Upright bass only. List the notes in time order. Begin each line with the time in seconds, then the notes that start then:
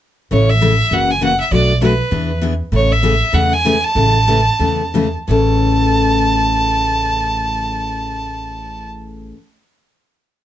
0.31 A1
0.91 F#1
1.51 B1
2.11 E2
2.72 A1
3.33 E2
3.95 A1
4.60 E2
5.28 A1